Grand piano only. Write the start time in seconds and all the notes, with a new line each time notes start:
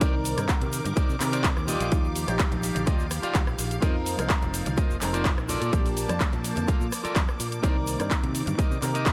0.01 D#3 C4 A#4 D5
0.37 D#3 C4 A#4
1.20 D#3 C4 A#4
1.91 F3 D#4 F4
2.27 F3 D#4 G4
3.82 F3 C4 D#4 A#4
4.18 F3 C4 D#4 A#4
5.01 F3 C4 D#4 A#4
5.73 F3 A#3 D4 G4
6.08 F3 A#3 D4 A5
7.63 D#3 C4 A#4 D5
7.99 D#3 C4 A#4 D5
8.82 D#3 C4 A#4